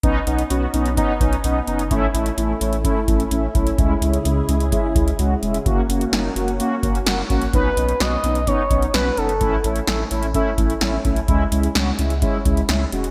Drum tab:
HH |x-xxx-xxx-xxx-xx|x-xxx-xxx-xxx-xx|x-xxx-xxx-xxx-xx|x-xxx-xxx-xxx-xx|
SD |----------------|----------------|----------------|----o-------o---|
BD |o-------o-o-----|o-------o-o---o-|o-------o-o-----|o---------o---o-|

HH |x-xxx-xxx-xxx-xx|x-xxx-xxx-xxx-xx|x-xxx-xxx-xxx-xx|
SD |----o-------o---|----o-------o---|----o-------o---|
BD |o-------o-o-----|o-------o-o---o-|o-------o-o-----|